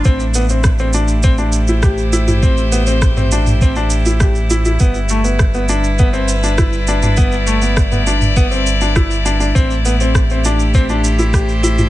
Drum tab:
SH |xxxxxxxxxxxxxxxx|xxxxxxxxxxxxxxxx|xxxxxxxxxxxxxxxx|xxxxxxxxxxxxxxxx|
SD |----r-------r---|----r-------r---|----r-------r---|----r-------r---|
T2 |---------------o|-----o-o--------|---------------o|-----o-o--------|
BD |o---o---o---o---|o---o---o---o---|o---o---o---o---|o---o---o---o---|

SH |xxxxxxxxxxxxxxxx|
SD |----r-------r---|
T2 |---------------o|
BD |o---o---o---o---|